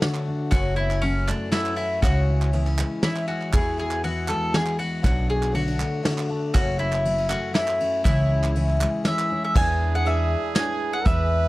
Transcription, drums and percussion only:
0.02 snare, ride
0.14 clap
0.52 kick, clap, ride
0.78 clap
0.91 clap
1.03 ride
1.29 clap
1.52 snare, ride
1.66 clap
1.77 ride
2.02 kick, clap, ride
2.42 clap
2.53 clap, ride
2.67 clap
2.79 clap
3.03 snare, ride
3.16 clap
3.29 clap
3.42 clap
3.53 kick, clap, ride
3.78 clap
3.91 clap
4.04 ride
4.28 clap
4.54 snare, ride
4.66 clap
4.79 ride
5.04 kick, clap, ride
5.30 clap
5.43 clap
5.55 ride
5.80 clap
6.05 snare, ride
6.18 clap
6.55 kick, clap, ride
6.80 clap
6.92 clap
7.05 ride
7.30 clap
7.55 snare, ride
7.68 clap
7.80 ride
8.05 kick, clap, ride
8.44 clap
8.55 ride
8.69 clap
8.81 clap
9.05 snare, ride
9.19 clap
9.55 kick, crash
10.06 closed hi-hat
10.56 snare, closed hi-hat
11.06 kick, closed hi-hat

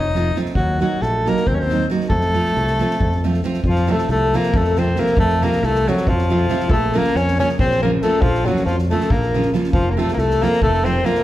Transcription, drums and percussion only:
0.15 snare
0.36 snare
0.45 snare
0.55 kick
0.80 snare
1.02 snare
1.26 snare
1.37 snare
1.47 kick
1.70 snare
1.90 snare
2.00 snare
2.10 kick
2.21 snare
2.33 snare
2.45 snare
2.55 snare
2.67 snare
2.79 snare
2.90 snare
3.00 kick
3.12 snare
3.23 snare
3.33 snare
3.43 snare
3.53 snare
3.64 kick
3.75 snare
3.87 snare
3.98 snare
4.08 snare
4.33 snare
4.43 snare
4.54 kick
4.64 snare
4.75 snare
4.96 snare
5.06 snare
5.17 kick
5.29 snare
5.41 snare
5.52 snare
5.63 snare
5.75 snare
5.87 snare
5.97 snare
6.07 kick
6.18 snare
6.49 snare
6.60 snare
6.70 kick
6.94 snare
7.04 snare
7.15 snare
7.27 snare
7.39 snare
7.49 snare
7.59 kick
7.71 snare
8.01 snare
8.22 kick
8.35 snare
8.46 snare
8.56 snare
8.67 snare
8.78 snare
8.90 snare
9.00 snare
9.10 kick
9.21 snare
9.33 snare
9.42 snare
9.54 snare
9.64 snare
9.73 kick
9.98 snare
10.08 snare
10.18 snare
10.30 snare
10.42 snare
10.53 snare
10.62 kick
10.74 snare
10.85 snare
11.05 snare
11.15 snare

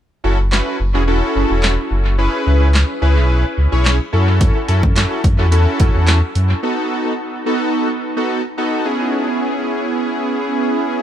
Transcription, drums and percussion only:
0.52 snare, clap
1.63 snare, clap
2.74 snare, clap
3.85 snare, clap
4.41 kick, closed hi-hat
4.68 closed hi-hat
4.83 kick
4.96 snare, clap, closed hi-hat
5.24 kick, closed hi-hat
5.52 closed hi-hat
5.80 kick, closed hi-hat
6.07 snare, clap, closed hi-hat
6.35 closed hi-hat

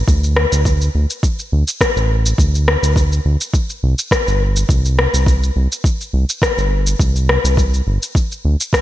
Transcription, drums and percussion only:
0.08 kick, shaker
0.24 shaker
0.36 cross-stick
0.52 shaker
0.65 kick, shaker
0.81 shaker
1.10 shaker
1.23 kick, shaker
1.39 shaker
1.68 shaker
1.81 kick, cross-stick, shaker
1.97 shaker
2.26 shaker
2.38 kick, shaker
2.55 shaker
2.68 cross-stick
2.84 shaker
2.96 kick, shaker
3.12 shaker
3.41 shaker
3.54 kick, shaker
3.70 shaker
3.99 shaker
4.11 kick, cross-stick, shaker
4.28 shaker
4.56 shaker
4.69 kick, shaker
4.85 shaker
4.99 cross-stick
5.14 shaker
5.26 kick, shaker
5.43 shaker
5.72 shaker
5.84 kick, shaker
6.01 shaker
6.29 shaker
6.42 kick, cross-stick, shaker
6.58 shaker
6.87 shaker
7.00 kick, shaker
7.16 shaker
7.29 cross-stick
7.45 shaker
7.57 kick, shaker
7.74 shaker
8.03 shaker
8.15 kick, shaker
8.32 shaker
8.61 shaker
8.73 kick, cross-stick, shaker

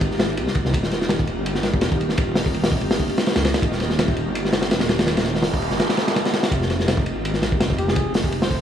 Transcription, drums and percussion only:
0.01 kick, ride
0.11 snare
0.19 snare, ride
0.29 ride
0.37 ride
0.47 snare
0.55 kick, ride
0.65 snare
0.74 kick, ride
0.83 snare
0.91 snare, ride
1.01 snare
1.09 snare, ride
1.19 kick
1.27 ride
1.46 ride
1.55 snare
1.63 snare, ride
1.74 kick
1.81 snare, ride
1.92 kick
2.01 ride
2.09 snare
2.18 kick, ride
2.35 snare, open hi-hat
2.46 kick
2.54 ride
2.64 snare, open hi-hat
2.72 kick
2.81 ride
2.91 snare, open hi-hat
2.99 kick
3.09 ride
3.18 snare, ride
3.26 snare, ride
3.36 snare, ride
3.45 snare, ride
3.54 snare, ride
3.62 kick, ride
3.72 snare
3.80 snare, ride
3.90 snare
3.99 snare, ride
4.08 kick
4.17 ride
4.35 ride
4.45 snare
4.53 snare, ride
4.62 snare, ride
4.71 snare, ride
4.80 snare, ride
4.89 snare, ride
4.99 snare, ride
5.07 snare, ride
5.17 snare, ride
5.25 snare, ride
5.35 snare
5.43 snare, open hi-hat
5.54 kick
5.62 ride
5.71 snare
5.80 snare, ride
5.89 snare, ride
5.97 snare, ride
6.08 snare, ride
6.16 snare, ride
6.25 snare, ride
6.33 snare, ride
6.43 snare, ride
6.51 kick, ride
6.62 snare
6.70 snare, ride
6.80 snare
6.88 snare, ride
6.97 kick
7.06 ride
7.25 ride
7.34 snare
7.42 snare, ride
7.52 kick
7.60 snare, ride
7.70 kick
7.78 ride
7.88 snare
7.96 kick, ride
8.14 snare, open hi-hat
8.24 kick
8.32 ride
8.42 snare, open hi-hat
8.51 kick

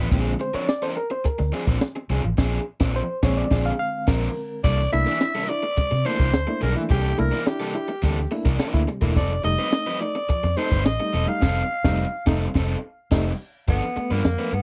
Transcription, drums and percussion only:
0.12 kick, closed hi-hat
0.27 snare
0.40 closed hi-hat
0.69 snare, closed hi-hat
0.97 closed hi-hat
1.25 kick, closed hi-hat
1.40 snare
1.54 open hi-hat
1.67 kick, snare
1.81 snare, closed hi-hat
2.10 closed hi-hat
2.38 kick, snare, crash
2.80 kick, snare
3.23 kick, snare
3.51 kick, snare
4.08 kick, snare, crash
4.64 kick, crash
4.79 snare
4.92 closed hi-hat
5.21 snare, closed hi-hat
5.49 closed hi-hat
5.77 kick, closed hi-hat
5.92 snare
6.06 open hi-hat
6.20 kick, snare
6.33 snare, closed hi-hat
6.62 closed hi-hat
6.90 kick, closed hi-hat
7.06 snare
7.19 closed hi-hat
7.33 snare
7.47 snare, closed hi-hat
7.75 closed hi-hat
8.03 kick, closed hi-hat
8.18 snare
8.32 open hi-hat
8.45 kick, snare
8.59 snare, closed hi-hat
8.74 kick, snare
8.88 closed hi-hat
9.02 kick
9.16 kick, closed hi-hat
9.31 snare
9.44 closed hi-hat
9.72 snare, closed hi-hat
10.01 closed hi-hat
10.29 kick, closed hi-hat
10.44 snare
10.58 open hi-hat
10.72 kick, snare
10.86 snare, closed hi-hat
11.14 closed hi-hat
11.42 kick, snare, crash
11.84 kick, snare
12.27 kick, snare
12.55 kick, snare
13.12 kick, snare, crash
13.68 kick, closed hi-hat
13.83 snare
13.97 closed hi-hat
14.11 snare
14.25 snare, closed hi-hat
14.53 closed hi-hat

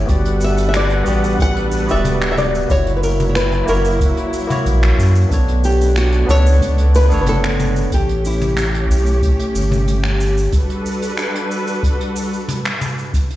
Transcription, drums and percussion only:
0.09 kick, closed hi-hat, cabasa
0.25 closed hi-hat
0.41 cabasa
0.58 closed hi-hat, cabasa
0.74 finger snap, closed hi-hat, cabasa
0.90 closed hi-hat
1.06 cabasa
1.24 cabasa
1.39 kick, closed hi-hat, cabasa
1.56 closed hi-hat
1.72 cabasa
1.89 cabasa
2.05 closed hi-hat, mid tom, cabasa
2.21 finger snap, closed hi-hat
2.38 mid tom, cabasa
2.55 cabasa
2.70 kick, closed hi-hat, cabasa
2.87 closed hi-hat
3.03 cabasa
3.20 closed hi-hat, mid tom, cabasa
3.35 finger snap, closed hi-hat, cabasa
3.52 closed hi-hat
3.68 cabasa
3.85 cabasa
4.01 kick, closed hi-hat, cabasa
4.17 closed hi-hat
4.33 cabasa
4.50 closed hi-hat, mid tom, cabasa
4.66 closed hi-hat, cabasa
4.83 finger snap, closed hi-hat
5.00 cabasa
5.16 cabasa
5.31 kick, closed hi-hat, cabasa
5.48 closed hi-hat
5.64 cabasa
5.81 closed hi-hat, cabasa
5.96 finger snap, closed hi-hat, cabasa
6.12 closed hi-hat
6.29 cabasa
6.47 cabasa
6.61 kick, closed hi-hat, cabasa
6.78 closed hi-hat
6.95 cabasa
7.11 cabasa
7.26 closed hi-hat, mid tom, cabasa
7.44 finger snap, closed hi-hat
7.60 mid tom, cabasa
7.76 cabasa
7.92 kick, closed hi-hat, cabasa
8.09 closed hi-hat
8.25 cabasa
8.41 closed hi-hat, mid tom, cabasa
8.57 finger snap, closed hi-hat, cabasa
8.74 closed hi-hat
8.91 cabasa
9.07 cabasa
9.22 kick, closed hi-hat, cabasa
9.39 closed hi-hat
9.55 cabasa
9.71 mid tom, cabasa
9.88 closed hi-hat, cabasa
10.04 finger snap, closed hi-hat
10.21 cabasa
10.38 cabasa
10.52 kick, closed hi-hat, cabasa
10.70 closed hi-hat
10.86 cabasa
11.02 closed hi-hat, cabasa
11.17 finger snap, closed hi-hat, cabasa
11.35 closed hi-hat
11.51 cabasa
11.68 cabasa
11.83 kick, closed hi-hat, cabasa
12.01 closed hi-hat
12.16 cabasa
12.34 cabasa
12.48 closed hi-hat, mid tom, cabasa
12.65 finger snap, closed hi-hat
12.81 mid tom, cabasa
12.98 cabasa
13.14 kick, closed hi-hat, cabasa
13.30 closed hi-hat

